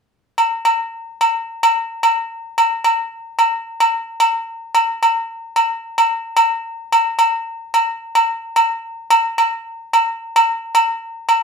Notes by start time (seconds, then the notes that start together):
0.38 low agogo
0.65 low agogo
1.21 low agogo
1.63 low agogo
2.03 low agogo
2.58 low agogo
2.84 low agogo
3.39 low agogo
3.80 low agogo
4.20 low agogo
4.75 low agogo
5.03 low agogo
5.56 low agogo
5.98 low agogo
6.37 low agogo
6.92 low agogo
7.19 low agogo
7.74 low agogo
8.15 low agogo
8.56 low agogo
9.10 low agogo
9.38 low agogo
9.93 low agogo
10.36 low agogo
10.75 low agogo
11.29 low agogo